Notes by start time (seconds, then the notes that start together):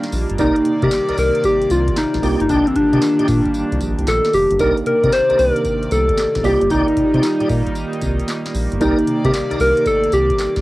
Already playing: D#3 G3 A#3 D4 F4 G4
0.03 snare, closed hi-hat
0.12 A#1, open hi-hat, tambourine
0.30 G1, closed hi-hat
0.38 C2 C3 D#3 A#3 D#4 G4 A#4 D5, kick, closed hi-hat, tambourine
0.56 closed hi-hat
0.65 C3, closed hi-hat
0.82 C3 D#4 G4 A#4 D5, kick, closed hi-hat
0.91 snare, clap, closed hi-hat, tambourine
1.09 C2 D#4 A#4 D5, closed hi-hat
1.18 C2 A#4, open hi-hat, tambourine
1.35 closed hi-hat
1.44 G4, kick, closed hi-hat, tambourine
1.62 closed hi-hat
1.70 C2 F4, closed hi-hat, tambourine
1.88 kick, closed hi-hat
1.96 D#4, snare, clap, closed hi-hat, tambourine
2.14 A#1, kick, snare, closed hi-hat
2.22 C2 D#3 G3 A#3 D4 D#4 F4 G4 D5, open hi-hat, tambourine
2.40 G1 D#4, closed hi-hat
2.49 C2 D4 D#4 G4 D5, kick, closed hi-hat, tambourine
2.67 C4, closed hi-hat
2.76 C3 D4, kick, closed hi-hat
2.93 C3 D#4 G4 D5, closed hi-hat
3.02 snare, clap, closed hi-hat, tambourine
3.19 A#2 D#4 G4 D5, closed hi-hat
3.28 A#2, kick, snare, open hi-hat, tambourine
3.45 kick, closed hi-hat
3.54 closed hi-hat, tambourine
3.72 C2, closed hi-hat
3.81 A#1, kick, closed hi-hat, tambourine
3.98 C2, closed hi-hat
4.07 A#1 A4, snare, clap, closed hi-hat, tambourine
4.25 snare, closed hi-hat
4.33 F1 G4, open hi-hat, tambourine
4.51 G1, closed hi-hat
4.59 C2 C3 D#3 A#3 D4 D#4 G4 A#4 D5, kick, closed hi-hat, tambourine
4.77 closed hi-hat
4.86 C3 A#4, closed hi-hat
5.03 C3 D#4 A#4 D5, kick, closed hi-hat
5.12 C5, snare, clap, closed hi-hat, tambourine
5.30 C2 D#4 A#4 D5, closed hi-hat
5.39 C2 A#4, open hi-hat, tambourine
5.56 closed hi-hat
5.65 kick, closed hi-hat, tambourine
5.83 closed hi-hat
5.91 C2 A4, closed hi-hat, tambourine
6.09 kick, closed hi-hat
6.17 snare, clap, closed hi-hat, tambourine
6.35 A#1, kick, snare, closed hi-hat
6.43 C2 D#3 G3 A#3 D#4 F4 G4 D5, open hi-hat, tambourine
6.61 G1, closed hi-hat
6.70 C2 D#4 G4 D5, kick, closed hi-hat, tambourine
6.88 closed hi-hat
6.97 C3, kick, closed hi-hat
7.14 C3 D#4 G4 D5, closed hi-hat
7.23 snare, clap, closed hi-hat, tambourine
7.40 A#2 D#4 G4 D5, closed hi-hat
7.49 A#2, kick, open hi-hat, tambourine
7.67 kick, closed hi-hat
7.75 closed hi-hat, tambourine
7.93 closed hi-hat
8.02 C2, kick, closed hi-hat, tambourine
8.19 closed hi-hat
8.28 snare, clap, closed hi-hat, tambourine
8.46 snare, closed hi-hat
8.54 A#1, open hi-hat, tambourine
8.72 G1, closed hi-hat
8.80 C2 C3 D#3 A#3 D#4 G4 A#4 D5, kick, closed hi-hat, tambourine
8.98 closed hi-hat
9.07 C3, closed hi-hat
9.24 C3 D#4 G4 A#4 D5, kick, closed hi-hat
9.34 snare, clap, closed hi-hat, tambourine
9.51 C2 D#4 A#4 D5, closed hi-hat
9.60 C2 A#4, open hi-hat, tambourine
9.77 closed hi-hat
9.86 A4, kick, closed hi-hat, tambourine
10.04 closed hi-hat
10.12 C2 G4, closed hi-hat, tambourine
10.30 kick, closed hi-hat
10.39 snare, clap, closed hi-hat, tambourine
10.56 A#1, kick, snare, closed hi-hat